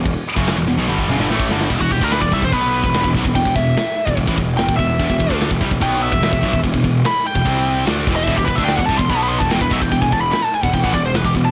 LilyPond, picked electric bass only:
\new Staff \with { instrumentName = "Picked electric bass" } { \clef bass \time 4/4 \key e \minor \tempo 4 = 146 e,,16 r8 fis,,8 e,,16 e,,16 b,,16 g,,8 fis,,16 g,,16 a,,8 g,,8 | e,,16 e,,16 e,,16 d,8 e,,16 c,16 e,,16 b,,8. e,,16 e,,16 e,,16 b,,16 e,,16 | e,,16 e,,16 e,,8 r8. e,,16 e,,16 a,,16 e,,8 e,,16 e,,16 e,,8 | e,,16 e,,16 e,,16 d,8 e,,16 c,16 e,,16 b,,8. e,,16 e,,16 e,,16 b,,16 e,,16 |
e,,16 e,,16 e,,8 r8. e,,16 c,4 d,8 e,,8 | e,,16 e,,16 e,,16 d,8 e,,16 c,16 e,,16 b,,8. e,,16 e,,16 e,,16 b,,16 e,,16 | e,,16 e,,16 e,,8 r8. e,,16 e,,16 a,,16 e,,8 e,,16 e,,16 e,,8 | }